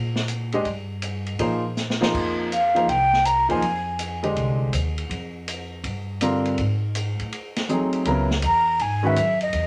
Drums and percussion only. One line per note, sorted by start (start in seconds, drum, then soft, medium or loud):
0.16 snare soft
0.28 hi-hat pedal soft
0.28 ride medium
0.52 ride soft
0.65 ride soft
1.02 hi-hat pedal medium
1.02 ride medium
1.26 ride soft
1.39 ride medium
1.77 snare soft
1.77 hi-hat pedal soft
1.90 snare medium
2.02 snare medium
2.14 kick medium
2.14 crash medium
2.52 hi-hat pedal medium
2.52 ride medium
2.76 ride soft
2.89 ride medium
3.13 snare soft
3.25 hi-hat pedal medium
3.25 ride medium
3.50 ride soft
3.62 ride medium
3.99 hi-hat pedal medium
3.99 ride medium
4.23 ride soft
4.36 ride medium
4.73 hi-hat pedal medium
4.73 ride medium
4.98 ride soft
5.11 ride medium
5.48 hi-hat pedal medium
5.48 ride medium
5.84 ride medium
6.21 hi-hat pedal medium
6.21 ride medium
6.45 ride soft
6.58 ride medium
6.95 hi-hat pedal medium
6.95 ride medium
7.19 ride soft
7.32 ride medium
7.56 snare soft
7.56 ride medium
7.69 hi-hat pedal medium
7.93 ride soft
8.05 ride medium
8.31 snare soft
8.42 hi-hat pedal soft
8.42 ride medium
8.79 ride medium
9.16 hi-hat pedal medium
9.16 ride medium
9.41 ride soft
9.53 ride medium